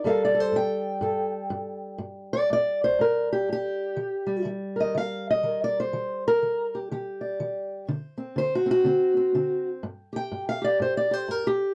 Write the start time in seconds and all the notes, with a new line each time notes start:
0.04 G2 G3 A4 A#4 F5
0.25 D5
0.35 A4
0.40 C5
0.52 G2
0.56 G5
1.01 G2 A4
1.50 G2
1.98 G2
2.33 D5
2.50 G2 D5
2.84 C5
2.99 G2 A#4
3.33 G4
3.48 G2
3.53 G4
3.97 D#3
4.27 G3
4.45 D#3
4.76 A#4
4.80 D#5
4.95 D#3 F5
5.30 D#5
5.43 D#3 A#4
5.64 D5
5.80 C5
5.93 D#3
6.28 A#4
6.42 D#3
6.75 G4
6.91 D#3 G4
7.21 D5
7.40 D#3
7.88 D3 C5
8.18 C4
8.36 D3 C5
8.55 F#4
8.66 C4
8.71 F#4
8.84 D3 C4
9.17 C4
9.35 D3 C4
9.83 G2
10.13 G4 G5
10.32 G2
10.49 F5
10.62 G4 D5
10.80 G2 C5
10.97 D5
11.11 G4 C5
11.28 G2 A#4
11.47 G4